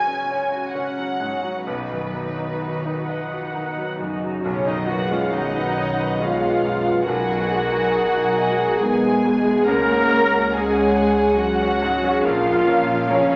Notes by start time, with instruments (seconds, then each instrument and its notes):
Already playing: grand piano C#2 G#2 F#3 C#4 F#4, cello section C#3, harp C#3 G#3 C#4 G#4, viola section C#4 F#4, violin section G#5
0.07 grand piano C#4
0.30 viola section C#4 F#4, harp C#4, grand piano C#5
0.52 grand piano F#4
0.75 cello section C#3, grand piano C#4, harp C#4, violin section F#5
0.98 grand piano F#3
1.20 grand piano G#2, harp C#4, viola section C#4 F#4
1.43 grand piano F#3
1.67 grand piano B1, harp B2, cello section B2, viola section D#4 F#4, violin section B4
1.91 grand piano F#2, harp D#3
2.14 grand piano F#3, harp B3, viola section D#4 F#4
2.38 grand piano D#4, harp D#4
2.62 cello section D#3, harp B3, grand piano F#4
2.86 grand piano D#4, harp D#4
3.08 cello section F3, viola section D#4 F#5, grand piano D#5
3.31 grand piano F#4
3.54 cello section D#3, grand piano D#4
3.77 grand piano F#3, harp D#4
4.00 grand piano F#2, cello section C#3, viola section D#4 F#4
4.22 grand piano F#3
4.43 grand piano B1, double bass section B1, harp B2, cello section C#3, french horn section F#3, viola section C#4, violin section C#5 F#5
4.66 grand piano F#2, cello section D#3, french horn section F#3, harp B3, viola section D#4, violin section D#5
4.88 harp C#3, cello section F#3, french horn section A#3, grand piano B3, viola section F#4, violin section F#5
5.10 cello section F3, french horn section G#3, grand piano C#4, harp C#4, viola section F4, violin section F5
5.32 cello section D#3, french horn section F#3, viola section D#4, grand piano F#4, violin section D#5
5.55 harp C#4, grand piano B4
5.77 harp B3, grand piano C#5
5.99 grand piano B4
6.20 cello section F3, french horn section G#3, harp B3, grand piano C#4, viola section F4, violin section F5
6.43 grand piano B3, harp C#4
6.64 grand piano F#2, harp B3
6.86 grand piano B3, harp F#4
7.05 grand piano B1, harp B2, cello section F#3, viola section F#4, french horn section A#4, violin section F#5 G#5
7.30 grand piano B2, harp G#3
7.51 grand piano G#3, harp B3
7.73 grand piano D#4, harp D#4
7.94 harp B3, grand piano G#4
8.16 harp D#4, grand piano D#4
8.38 harp G#3, grand piano D#5
8.59 harp G#4, grand piano G#4
8.79 cello section G#3, harp G#3, french horn section B3, grand piano D#4, viola section G#4, violin section G#5
9.03 grand piano G#3, harp D#4
9.24 grand piano B2, harp G#3
9.47 grand piano G#3, harp G#4
9.65 grand piano C#2, double bass section C#2, harp C#3, cello section A#3, french horn section C#4, viola section A#4, violin section F#5 A#5
9.90 grand piano G#2, harp C#4
10.11 harp G#3, grand piano C#4
10.33 harp F#4, grand piano F#4
10.53 cello section G#3, harp G#3, french horn section C#4, viola section G#4, grand piano G#4, violin section G#5
10.75 harp F#4, grand piano C#5
10.96 harp C#4, grand piano F#5
11.17 harp G#4, grand piano C#5
11.37 cello section F#3, french horn section C#4, harp C#4, viola section F#4, grand piano F#4, violin section F#5
11.60 grand piano C#4, harp F#4
11.82 grand piano G#2, harp C#4
12.03 grand piano C#4, harp G#4
12.22 double bass section A#1, grand piano A#1, harp A#2, cello section F3, french horn section A#3, viola section F4, violin section F5
12.45 grand piano F2, harp C#4
12.67 harp F3, grand piano C#4
12.88 harp F4, grand piano F4
13.08 cello section C#3, french horn section F3, harp F3, viola section C#4, grand piano A#4, violin section C#5
13.32 harp F4